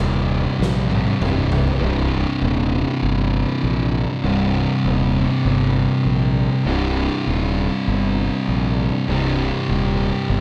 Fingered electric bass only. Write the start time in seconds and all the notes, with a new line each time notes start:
0.00 D#1
0.59 A#1
1.21 C1
1.81 C1
2.42 D#1
3.02 G1
3.63 A#1
4.24 C1
4.84 D#1
5.45 G1
6.05 A#1
6.65 C1
7.27 D#1
7.87 G1
8.48 A#1
9.08 C1
9.68 D#1
10.29 G1